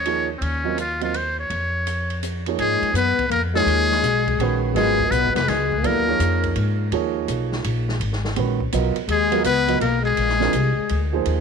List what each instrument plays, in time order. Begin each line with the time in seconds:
Already playing: upright bass D#2, muted trumpet C#5
0.05 grand piano F3 A#3 D#4 G#4 C#5, ride
0.38 upright bass D#2, muted trumpet C4
0.42 muted trumpet C#4, ride
0.64 grand piano F#3 C4 F4 A#4 D#5
0.78 muted trumpet F4, hi-hat pedal, ride
1.01 grand piano F#3 C4 F4 A#4 D#5, muted trumpet F4, ride
1.14 muted trumpet C5, ride
1.39 muted trumpet C#5
1.50 upright bass F2, ride
1.87 hi-hat pedal, ride
2.10 ride
2.23 hi-hat pedal, ride
2.46 grand piano F3 A#3 D#4 G#4 C#5, ride
2.59 upright bass G#2, trombone G#3, muted trumpet G#4, ride
2.82 muted upright bass stroke, ride
2.93 upright bass F#2, trombone B3, muted trumpet B4, hi-hat pedal, ride
3.19 muted upright bass stroke, kick, ride
3.29 upright bass F2, trombone A#3, muted trumpet A#4, ride
3.54 grand piano F3 A#3 D#4 G#4 C#5, trombone G#3, muted trumpet G#4, snare
3.66 upright bass D#2, ride
3.92 snare
4.02 upright bass B1, hi-hat pedal, ride
4.28 kick, ride
4.39 upright bass A#1, grand piano D#3 G#3 C#4 F#4 B4, ride
4.73 upright bass G#1, grand piano F#3 B3 F4 A#4, trombone G#3, muted trumpet G#4, snare, ride
4.77 grand piano D#5
5.00 kick
5.09 upright bass B1, trombone B3, muted trumpet B4, hi-hat pedal, ride
5.24 upright bass G#1
5.33 upright bass F1, trombone B3, muted trumpet B4, snare, ride
5.45 upright bass C#2, trombone G#3, muted trumpet G#4, snare, ride
5.72 kick
5.81 upright bass D#2, grand piano F#3 B3 E4 A4 D5, trombone A#3, ride
5.86 muted trumpet A#4
6.07 grand piano F3 A#3 D#4 G#4 C#5
6.19 upright bass F2, hi-hat pedal, ride
6.44 kick, ride
6.56 upright bass G#2, ride
6.91 upright bass D#2, grand piano F3 A#3 D#4 G#4 C#5, ride
7.28 upright bass B1, hi-hat pedal, ride
7.52 snare
7.64 upright bass A#1, ride
7.89 snare
8.00 upright bass G#1, ride
8.13 snare
8.25 snare
8.36 upright bass A#1, grand piano D#3 G#3 C#4 F#4 B4, ride
8.60 kick
8.72 upright bass B1, grand piano F#3 B3 F4 A#4 D#5, hi-hat pedal, ride
8.96 ride
9.08 upright bass D#2, trombone G#3, muted trumpet G#4, ride
9.31 grand piano F#3 B3 F4 A#4 D#5, ride
9.44 upright bass C#2, trombone B3, muted trumpet B4, hi-hat pedal, ride
9.68 grand piano F#3 B3 F4 A#4 D#5, ride
9.79 upright bass B1, trombone A#3, muted trumpet A#4, ride
10.02 trombone G#3, muted trumpet G#4
10.17 upright bass A#1, ride
10.29 snare
10.40 grand piano G#3 C4 D4 F4 A#4, snare
10.53 upright bass C2, hi-hat pedal, ride
10.78 muted upright bass stroke
10.89 upright bass D2, ride
11.13 grand piano F3 A#3 D#4 G#4 C5
11.26 upright bass D#2, ride